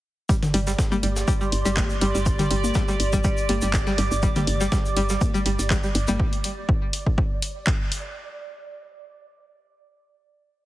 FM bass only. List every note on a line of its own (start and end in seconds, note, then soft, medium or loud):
0.54 0.74 G1 loud
1.03 1.23 G1 medium
1.52 1.63 G1 medium
1.65 1.85 G1 medium
2.01 2.12 G1 loud
2.15 2.34 G1 loud
2.51 2.71 G1 loud
3.00 3.20 G1 medium
3.49 3.60 G1 medium
3.62 3.82 G1 medium
3.98 4.09 G1 loud
4.11 4.31 G1 loud
4.47 4.68 G1 loud
4.96 5.17 G1 medium
5.46 5.56 G1 medium
5.59 5.78 G1 medium
5.95 6.06 G1 loud
6.08 6.17 G1 loud